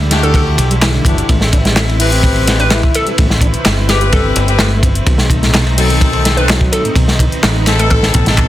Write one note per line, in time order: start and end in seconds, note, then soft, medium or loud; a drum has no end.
0.00 0.57 D2 medium
0.00 1.26 D3 medium
0.00 1.26 G3 medium
0.00 5.03 E4 loud
0.11 0.68 D4 loud
0.11 0.68 F#4 loud
0.11 0.68 G4 loud
0.11 snare soft
0.11 closed hi-hat medium
0.11 ride medium
0.23 0.32 D4 medium
0.23 0.31 A4 medium
0.23 closed hi-hat soft
0.34 0.44 D3 medium
0.34 0.43 A4 medium
0.34 kick loud
0.34 closed hi-hat soft
0.34 ride medium
0.58 0.98 B1 medium
0.58 closed hi-hat medium
0.58 ride medium
0.70 0.75 G3 medium
0.70 closed hi-hat soft
0.82 0.91 E3 loud
0.82 snare loud
0.82 clap loud
0.82 closed hi-hat soft
0.82 ride medium
0.94 1.04 D3 medium
1.05 1.20 F#1 medium
1.05 1.17 E3 loud
1.05 1.27 D4 medium
1.05 1.27 F#4 medium
1.05 1.27 G4 medium
1.05 kick loud
1.05 closed hi-hat medium
1.05 ride medium
1.18 closed hi-hat soft
1.29 2.88 A1 loud
1.29 1.38 A3 medium
1.29 8.48 C4 medium
1.29 5.03 B4 medium
1.29 kick loud
1.29 closed hi-hat soft
1.29 ride medium
1.41 snare soft
1.52 1.58 D4 medium
1.52 kick medium
1.52 closed hi-hat medium
1.52 ride medium
1.65 1.75 G3 medium
1.65 snare soft
1.65 closed hi-hat soft
1.76 1.85 A3 medium
1.76 snare loud
1.76 clap loud
1.76 closed hi-hat soft
1.76 ride medium
1.89 ride soft
1.99 2.57 C4 loud
1.99 2.11 E4 medium
1.99 2.57 G4 loud
1.99 2.57 B4 loud
1.99 closed hi-hat medium
1.99 open hi-hat medium
2.12 2.58 C4 medium
2.12 closed hi-hat soft
2.23 kick loud
2.23 closed hi-hat soft
2.23 ride medium
2.36 ride soft
2.47 snare soft
2.47 closed hi-hat medium
2.47 ride medium
2.59 2.80 C4 loud
2.59 2.64 D4 medium
2.59 2.81 G4 medium
2.59 2.81 B4 loud
2.59 2.79 B4 medium
2.59 closed hi-hat soft
2.71 3.05 E4 loud
2.71 snare loud
2.71 clap loud
2.71 closed hi-hat soft
2.71 ride medium
2.83 kick loud
2.95 3.14 A4 medium
2.95 closed hi-hat medium
2.95 ride medium
3.07 3.12 G3 medium
3.07 closed hi-hat soft
3.18 3.53 A1 loud
3.18 3.27 A3 medium
3.18 kick loud
3.18 closed hi-hat soft
3.18 ride medium
3.30 snare soft
3.41 3.47 D4 medium
3.41 kick medium
3.41 closed hi-hat medium
3.41 ride medium
3.53 muted fingered electric bass stroke soft
3.53 closed hi-hat soft
3.65 4.35 G1 medium
3.65 snare loud
3.65 clap loud
3.65 closed hi-hat soft
3.65 ride medium
3.89 4.46 C4 loud
3.89 4.46 G4 loud
3.89 4.11 G4 medium
3.89 4.46 B4 loud
3.89 snare soft
3.89 closed hi-hat medium
3.89 ride medium
4.01 4.09 G4 medium
4.01 closed hi-hat soft
4.12 4.22 G3 medium
4.12 4.49 A4 medium
4.12 kick loud
4.12 closed hi-hat soft
4.12 ride medium
4.36 5.00 G1 medium
4.36 closed hi-hat medium
4.36 ride medium
4.48 4.53 C4 medium
4.48 4.70 C4 loud
4.48 4.70 G4 medium
4.48 4.69 B4 loud
4.48 closed hi-hat soft
4.59 4.82 A3 loud
4.59 snare loud
4.59 clap loud
4.59 closed hi-hat soft
4.59 ride medium
4.83 4.89 C4 medium
4.83 kick loud
4.83 closed hi-hat medium
4.83 ride medium
4.95 closed hi-hat soft
5.06 6.65 B1 loud
5.06 5.16 B2 medium
5.06 6.94 A3 medium
5.06 8.48 D#4 loud
5.06 kick loud
5.06 closed hi-hat soft
5.06 ride medium
5.18 snare soft
5.30 5.36 D#3 medium
5.30 kick loud
5.30 closed hi-hat medium
5.30 ride medium
5.43 5.53 A2 medium
5.43 snare soft
5.43 closed hi-hat soft
5.54 5.63 B2 medium
5.54 snare loud
5.54 clap loud
5.54 closed hi-hat soft
5.54 ride loud
5.67 ride soft
5.78 5.90 F#3 medium
5.78 6.35 C4 loud
5.78 6.35 D#4 loud
5.78 6.35 A4 loud
5.78 closed hi-hat medium
5.78 open hi-hat medium
5.90 6.36 D#3 medium
5.90 closed hi-hat soft
6.01 kick loud
6.01 closed hi-hat soft
6.01 ride medium
6.13 ride soft
6.25 snare soft
6.25 closed hi-hat medium
6.25 ride medium
6.37 6.42 D#3 medium
6.37 6.59 C4 loud
6.37 6.59 D#4 medium
6.37 6.59 A4 loud
6.37 6.56 B4 medium
6.37 closed hi-hat soft
6.49 6.84 F#3 loud
6.49 snare loud
6.49 clap loud
6.49 closed hi-hat soft
6.49 ride loud
6.61 kick loud
6.72 6.92 A4 loud
6.72 closed hi-hat medium
6.72 ride medium
6.85 6.90 A2 medium
6.85 closed hi-hat soft
6.96 7.31 B1 loud
6.96 7.05 B2 medium
6.96 8.48 B4 medium
6.96 kick loud
6.96 closed hi-hat soft
6.96 ride medium
7.08 snare soft
7.19 7.25 D#3 medium
7.19 kick loud
7.19 closed hi-hat medium
7.19 ride medium
7.32 muted fingered electric bass stroke soft
7.32 closed hi-hat soft
7.43 8.14 A1 medium
7.43 snare loud
7.43 clap loud
7.43 closed hi-hat soft
7.43 ride medium
7.66 8.24 C4 loud
7.66 8.24 D#4 loud
7.66 8.24 A4 loud
7.66 snare medium
7.66 closed hi-hat medium
7.66 ride medium
7.79 7.87 A3 medium
7.79 7.87 A4 medium
7.79 closed hi-hat soft
7.90 7.99 A2 medium
7.90 7.98 A4 medium
7.90 kick medium
7.90 closed hi-hat soft
7.90 ride medium
8.03 snare soft
8.14 8.48 A1 medium
8.14 8.25 B2 medium
8.14 kick medium
8.14 closed hi-hat medium
8.14 ride medium
8.26 8.36 B2 loud
8.26 8.48 C4 loud
8.26 8.47 D#4 medium
8.26 8.47 A4 loud
8.26 snare medium
8.26 closed hi-hat soft
8.37 8.46 B2 medium
8.37 kick loud
8.37 clap loud
8.37 closed hi-hat soft
8.37 ride medium